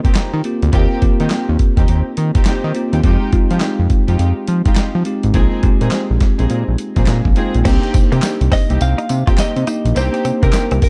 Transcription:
Already playing: tine electric piano A#3 C4 F4 G4 A#4
0.04 string section A#3 C4 D#4 G4, kick, closed hi-hat
0.15 snare, clap, closed hi-hat
0.33 analog synth bass D#3
0.44 tine electric piano A#3 C4 F4 G4, closed hi-hat
0.62 analog synth bass D2, closed hi-hat
0.73 analog synth bass D#2, string section A#3 C4 D#4 G4, tine electric piano A#3 C4 F4 A#4, kick, closed hi-hat
1.01 analog synth bass D#3, tine electric piano A#3 C4 F4 G4, kick, closed hi-hat
1.19 analog synth bass D#3, string section A#3 C4 D#4 G4, closed hi-hat
1.30 snare, clap, closed hi-hat
1.49 analog synth bass D#2
1.59 kick, closed hi-hat
1.77 analog synth bass D#2, string section A#3 C4 D#4 G4, kick, closed hi-hat
1.88 analog synth bass D#2, closed hi-hat
2.17 analog synth bass D#3, closed hi-hat
2.35 string section A#3 C4 D#4 G4, kick, closed hi-hat
2.45 string section A#3 C4 D#4 G4, snare, clap, closed hi-hat
2.64 analog synth bass D#3
2.75 tine electric piano A#3 C4 F4 G4, closed hi-hat
2.92 analog synth bass D#2, string section A#3 C4 D#4 G4, closed hi-hat
3.03 analog synth bass F2, string section G#3 D#4 F4 G4, tine electric piano G#3 C4 D#4 G4, kick, closed hi-hat
3.32 analog synth bass F3, tine electric piano G#3 C4 D#4 F4, kick, closed hi-hat
3.50 analog synth bass F3, string section G#3 D#4 F4 G4, closed hi-hat
3.60 snare, clap, closed hi-hat
3.79 analog synth bass F2
3.90 kick, closed hi-hat
4.08 analog synth bass F2, string section G#3 D#4 F4 G4, closed hi-hat
4.19 analog synth bass F2, closed hi-hat
4.47 analog synth bass F3, closed hi-hat
4.65 string section G#3 D#4 F4 G4, kick, closed hi-hat
4.76 snare, clap, closed hi-hat
4.95 analog synth bass F3
5.05 tine electric piano G#3 C4 D#4 G4, closed hi-hat
5.23 analog synth bass G#1, closed hi-hat
5.34 analog synth bass A#1, tine electric piano G#3 C4 D#4 F4, string section A#3 C4 D#4 G#4, kick, closed hi-hat
5.63 analog synth bass A#2, tine electric piano G#3 C4 D#4 G4, kick, closed hi-hat
5.81 analog synth bass A#2, string section A#3 C4 D#4 G#4, closed hi-hat
5.91 snare, clap, closed hi-hat
6.10 analog synth bass A#1
6.20 kick, snare, closed hi-hat
6.38 analog synth bass A#1, string section A#3 C4 D#4 G#4, closed hi-hat
6.50 analog synth bass A#2, closed hi-hat
6.68 analog synth bass A#1
6.78 closed hi-hat
6.96 analog synth bass A#1, string section A#3 C4 D#4 G#4, kick, closed hi-hat
7.06 analog synth bass A#2, tine electric piano F5, snare, clap, closed hi-hat
7.25 analog synth bass A#1, kick
7.36 tine electric piano G#3 C4 D#4 F4 G5, string section A#3 C4 D#4 G#4, closed hi-hat
7.54 analog synth bass A#1, closed hi-hat
7.65 analog synth bass C2, string section A#3 C4 D#4 G4, tine electric piano A#3 D4 D#4 G4, clean electric guitar C4, kick, closed hi-hat, crash, tambourine
7.83 closed hi-hat
7.94 analog synth bass C3, muted clean electric guitar stroke, kick, closed hi-hat, tambourine
8.11 analog synth bass C3, string section A#3 C4 D#4 G4, clean electric guitar A#3, closed hi-hat
8.22 snare, clap, closed hi-hat, tambourine
8.41 analog synth bass C2, closed hi-hat
8.52 clean electric guitar C4 D#5, kick, snare, open hi-hat
8.69 analog synth bass C2, string section A#3 C4 D#4 G4, closed hi-hat
8.81 analog synth bass C2, clean electric guitar F5, closed hi-hat, tambourine
8.98 clean electric guitar D#4, closed hi-hat
9.09 analog synth bass C3, muted clean electric guitar stroke, closed hi-hat, tambourine
9.27 string section A#3 C4 D#4 G4, clean electric guitar F4, kick, closed hi-hat
9.38 clean electric guitar D#5, snare, clap, closed hi-hat, tambourine
9.56 analog synth bass C3, closed hi-hat
9.67 tine electric piano A#3 D4 D#4 G4, clean electric guitar D#4, closed hi-hat, tambourine
9.85 analog synth bass A#1, closed hi-hat
9.95 analog synth bass C2, string section A#3 C4 D#4 G4, tine electric piano A#3 D4 D#4 G4, clean electric guitar C5, closed hi-hat, tambourine
10.14 muted clean electric guitar stroke, closed hi-hat
10.25 analog synth bass C3, clean electric guitar C4, closed hi-hat, tambourine
10.42 analog synth bass C3, string section A#3 C4 D#4 G4, clean electric guitar A#3 A#4, kick, closed hi-hat
10.53 snare, clap, closed hi-hat, tambourine
10.71 analog synth bass C2, clean electric guitar C4, closed hi-hat
10.82 clean electric guitar A#4, muted clean electric guitar stroke, kick, open hi-hat

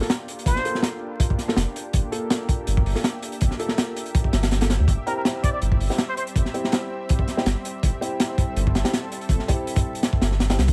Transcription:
Already playing: analog synth pad A#3 D4 F4 G4
0.01 grand piano A#3 F4 A4, snare
0.10 snare, closed hi-hat
0.28 closed hi-hat
0.39 closed hi-hat
0.46 sub bass G1, muted trumpet C5, kick, closed hi-hat
0.56 snare
0.65 grand piano A#3 F4 A4, closed hi-hat
0.75 snare
0.83 snare, closed hi-hat
1.20 kick, closed hi-hat
1.30 kick
1.38 snare, closed hi-hat
1.48 grand piano A#3 F4 A4, snare
1.56 sub bass F1, snare, closed hi-hat
1.76 closed hi-hat
1.93 sub bass G1, analog synth pad E5, kick, closed hi-hat
2.12 grand piano A#3 F4 A4, closed hi-hat
2.30 snare, closed hi-hat
2.49 kick, closed hi-hat
2.67 sub bass G1, closed hi-hat
2.77 kick
2.86 sub bass G1, open hi-hat
2.95 grand piano A#3 F4 A4, snare
3.04 snare, closed hi-hat
3.23 closed hi-hat
3.32 closed hi-hat
3.41 sub bass G1, kick, closed hi-hat
3.51 snare
3.59 grand piano A#3 F4 A4, closed hi-hat
3.68 snare
3.78 snare, closed hi-hat
3.97 closed hi-hat
4.06 closed hi-hat
4.15 kick, closed hi-hat
4.24 kick
4.33 sub bass G1, snare, closed hi-hat
4.43 snare, closed hi-hat
4.51 snare, closed hi-hat
4.61 grand piano A#3 F4 A4, snare, closed hi-hat
4.70 snare, closed hi-hat
4.80 sub bass D2
4.88 sub bass G1, analog synth pad G3 C4, kick, closed hi-hat
5.06 grand piano C4 E4 G4, muted trumpet A#4, closed hi-hat
5.17 muted trumpet A#4
5.25 snare, closed hi-hat
5.43 muted trumpet D5, kick, closed hi-hat
5.53 muted trumpet D5
5.62 sub bass G1, closed hi-hat
5.72 kick
5.80 sub bass G1, open hi-hat
5.90 grand piano C4 E4 G4, snare
5.98 snare, closed hi-hat
6.09 muted trumpet C5
6.17 muted trumpet C5, closed hi-hat
6.27 closed hi-hat
6.36 sub bass G1, kick, closed hi-hat
6.45 snare
6.54 grand piano C4 E4 G4, closed hi-hat
6.64 snare
6.72 snare, closed hi-hat
7.09 kick, closed hi-hat
7.19 kick
7.28 snare, closed hi-hat
7.37 grand piano C4 E4 G4, snare
7.46 sub bass G1, snare, closed hi-hat
7.65 closed hi-hat
7.83 sub bass G1, analog synth pad A4, kick, closed hi-hat
8.01 grand piano C4 E4 G4, closed hi-hat
8.20 snare, closed hi-hat
8.38 kick, closed hi-hat
8.56 sub bass G1, closed hi-hat
8.67 kick
8.75 sub bass G1, snare, closed hi-hat
8.84 grand piano C4 E4 G4, snare, closed hi-hat
8.93 snare, closed hi-hat
9.12 closed hi-hat
9.21 closed hi-hat
9.29 sub bass G1, kick, closed hi-hat
9.39 snare
9.48 grand piano C4 E4 G4, kick, closed hi-hat
9.67 closed hi-hat
9.76 kick, closed hi-hat
9.95 closed hi-hat
10.03 snare, closed hi-hat
10.13 kick
10.21 sub bass G1, snare, closed hi-hat
10.31 snare
10.40 snare, closed hi-hat
10.50 grand piano C4 E4 G4, snare, closed hi-hat
10.59 sub bass C2, snare, closed hi-hat
10.68 sub bass D2, kick, closed hi-hat

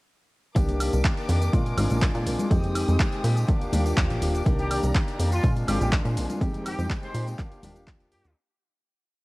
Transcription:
0.55 analog synth bass C2, clean electric guitar D#3 A#3 D4 G4, tine electric piano D#3 A#3 D4 G4, violin section A#4 D6, kick, closed hi-hat, tambourine, shaker
0.68 closed hi-hat, tambourine, low conga
0.79 clean electric guitar D#3 A#3 D4 G4, open hi-hat, high woodblock, shaker
0.93 analog synth bass C2, closed hi-hat, tambourine, shaker
1.04 clean electric guitar D#3 A#3 D4 G4, kick, clap, closed hi-hat, shaker
1.17 closed hi-hat, tambourine
1.28 analog synth bass F2, clean electric guitar D#3 A#3 D4 G4, open hi-hat, shaker
1.41 clean electric guitar A#3 D4 G4, closed hi-hat, tambourine, shaker
1.53 analog synth bass A#2, clean electric guitar F3 G#3 D4 F4, tine electric piano G#3 C4 D4 F4, violin section G#5, kick, closed hi-hat, tambourine, shaker
1.65 clean electric guitar G#3 D4 F4, closed hi-hat, tambourine
1.77 analog synth bass G#1, clean electric guitar F3 G#3 D4 F4, open hi-hat, high conga, high woodblock, shaker
1.90 analog synth bass A#1, clean electric guitar G#3 D4 F4, closed hi-hat, tambourine, low conga, shaker
2.01 clean electric guitar F3 G#3 F4, kick, clap, closed hi-hat, tambourine, shaker
2.15 analog synth bass A#2, closed hi-hat, tambourine
2.26 analog synth bass A#1, open hi-hat, low conga, shaker
2.39 clean electric guitar G#3 D4 F4, closed hi-hat, tambourine, high conga, shaker
2.50 analog synth bass F2, clean electric guitar D#3 G#3 C4 G4, tine electric piano G#3 C4 D#4 G4, violin section G#3 G5 D#6, kick, closed hi-hat, tambourine, shaker
2.64 closed hi-hat, tambourine, low conga
2.75 clean electric guitar D#3 G#3 C4 G4, open hi-hat, high woodblock, shaker
2.88 analog synth bass F2, closed hi-hat, tambourine, high conga, shaker
2.99 clean electric guitar D#3 G#3 C4 G4, kick, clap, closed hi-hat, tambourine, shaker
3.12 closed hi-hat, tambourine
3.23 analog synth bass A#2, clean electric guitar D#3 G#3 C4 G4, open hi-hat, shaker
3.36 clean electric guitar G#3 C4 G4, closed hi-hat, tambourine, shaker
3.48 clean electric guitar F3 A#3 D4 G4, tine electric piano A#3 D4 F4 G4, violin section G4 F5 D6, kick, closed hi-hat, tambourine, shaker
3.61 analog synth bass D#2, clean electric guitar A#3 D4 G4, closed hi-hat, tambourine
3.72 analog synth bass D#2, clean electric guitar F3 A#3 D4 G4, open hi-hat, high conga, shaker
3.85 clean electric guitar A#3 D4 G4, closed hi-hat, tambourine, shaker
3.97 analog synth bass D#2, clean electric guitar F3 G4, kick, clap, closed hi-hat, shaker
4.10 analog synth bass A#1, closed hi-hat, tambourine
4.22 analog synth bass D#1, open hi-hat, shaker
4.34 clean electric guitar A#3 D4 G4, closed hi-hat, tambourine, shaker
4.45 analog synth bass C2, clean electric guitar D#3 A#3 D4 G4, tine electric piano D#3 A#3 D4 G4, violin section D5 A#5, kick, closed hi-hat, tambourine, shaker
4.58 horn section G4, closed hi-hat, tambourine, low conga
4.70 clean electric guitar D#3 A#3 D4 G4, open hi-hat, high woodblock, shaker
4.83 analog synth bass C2, closed hi-hat, tambourine, shaker
4.94 clean electric guitar A#3 D4 G4, kick, clap, closed hi-hat, tambourine, shaker
5.08 closed hi-hat, tambourine
5.19 analog synth bass F2, clean electric guitar D#3 A#3 D4 G4, open hi-hat, shaker
5.31 clean electric guitar A#3 D4 G4, horn section F4, closed hi-hat, tambourine, shaker
5.43 analog synth bass A#2, clean electric guitar F3 G#3 D4 F4, tine electric piano G#3 C4 D4 F4, violin section D4 A#4 G#5, kick, closed hi-hat, tambourine, shaker
5.56 clean electric guitar G#3 D4 F4, closed hi-hat, tambourine
5.67 analog synth bass G#1, clean electric guitar F3 G#3 D4 F4, horn section G4, open hi-hat, high conga, high woodblock, shaker
5.80 analog synth bass A#1, clean electric guitar G#3 D4 F4, horn section G4, closed hi-hat, tambourine, low conga, shaker
5.92 clean electric guitar F3 D4 F4, kick, clap, closed hi-hat, tambourine, shaker
6.05 analog synth bass A#2, closed hi-hat, tambourine
6.17 analog synth bass A#1, open hi-hat, low conga, shaker
6.29 clean electric guitar G#3 D4 F4, closed hi-hat, tambourine, high conga, shaker
6.41 analog synth bass F2, clean electric guitar D#3 G#3 C4 G4, tine electric piano G#3 C4 D#4 G4, violin section G#3 D#4 G5, kick, closed hi-hat, tambourine, shaker
6.54 closed hi-hat, tambourine, low conga
6.65 clean electric guitar D#3 G#3 C4 G4, horn section G4, open hi-hat, high woodblock, shaker
6.78 analog synth bass F2, closed hi-hat, tambourine, high conga, shaker
6.89 clean electric guitar D#3 G#3 C4 G4, kick, clap, closed hi-hat, shaker
7.02 horn section C5, closed hi-hat, tambourine
7.14 analog synth bass A#2, clean electric guitar D#3 G#3 C4 G4, open hi-hat, shaker
7.26 clean electric guitar G#3 C4 G4, closed hi-hat, tambourine, shaker
7.38 clean electric guitar F3 D4 G4, tine electric piano A#3 D4 F4 G4, violin section D4 G4 F5, kick, clap, closed hi-hat, shaker
7.51 analog synth bass D#1, clean electric guitar A#3 D4 G4, closed hi-hat, tambourine
7.62 analog synth bass D#1, clean electric guitar F3 A#3 D4 G4, open hi-hat, high conga, shaker
7.75 clean electric guitar A#3 D4 G4, closed hi-hat, tambourine, shaker
7.87 clean electric guitar F3 G4, kick, clap, closed hi-hat, shaker
8.00 closed hi-hat, tambourine
8.12 analog synth bass G2, horn section G4, open hi-hat, shaker
8.24 analog synth bass D#2, clean electric guitar A#3 D4 G4, closed hi-hat, tambourine, shaker

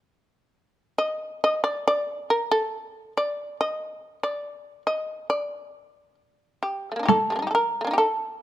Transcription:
0.98 shamisen D#5
1.44 shamisen D#5
1.64 shamisen D5
1.88 shamisen D5
2.30 shamisen A#4
2.51 shamisen A4
3.17 shamisen D5
3.61 shamisen D#5
4.23 shamisen D5
4.87 shamisen D#5
5.30 shamisen D5
6.63 shamisen G4
6.92 shamisen A3
6.96 shamisen A#3 D4
7.03 shamisen D#4 G4
7.08 shamisen A4, taiko rim, taiko high
7.30 shamisen G3 A3
7.36 shamisen A#3 D4
7.42 shamisen D#4
7.47 shamisen G4 A4
7.55 shamisen A#4
7.81 shamisen A3 A#3
7.87 shamisen D4 D#4
7.93 shamisen G4
7.98 shamisen A4

